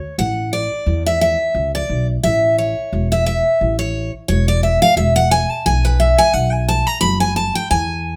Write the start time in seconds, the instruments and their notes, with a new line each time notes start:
Already playing: steel-string acoustic guitar C#5
0.18 upright bass A1, steel-string acoustic guitar F#5
0.53 steel-string acoustic guitar D5
0.86 upright bass E2
1.06 steel-string acoustic guitar E5
1.21 steel-string acoustic guitar E5
1.55 upright bass C#2
1.75 steel-string acoustic guitar D5
1.90 upright bass B1
2.23 upright bass A1, steel-string acoustic guitar E5
2.58 steel-string acoustic guitar C#5
2.93 upright bass E1
3.12 steel-string acoustic guitar E5
3.26 steel-string acoustic guitar E5
3.61 upright bass A1
3.79 steel-string acoustic guitar C#5
4.28 upright bass E1, steel-string acoustic guitar C#5
4.48 steel-string acoustic guitar D5
4.63 steel-string acoustic guitar E5
4.82 steel-string acoustic guitar F5
4.97 upright bass E1, steel-string acoustic guitar E5
5.16 steel-string acoustic guitar F#5
5.31 steel-string acoustic guitar G#5
5.51 steel-string acoustic guitar A5
5.66 upright bass B1, steel-string acoustic guitar G#5
5.85 steel-string acoustic guitar B4
6.00 steel-string acoustic guitar E5
6.18 steel-string acoustic guitar G#5
6.33 upright bass B1, steel-string acoustic guitar F#5
6.52 steel-string acoustic guitar G#5
6.68 steel-string acoustic guitar A5
6.87 steel-string acoustic guitar A#5
7.01 upright bass F#1, steel-string acoustic guitar B5
7.20 steel-string acoustic guitar G#5
7.36 steel-string acoustic guitar A5
7.55 steel-string acoustic guitar G5
7.71 upright bass E2, steel-string acoustic guitar G#5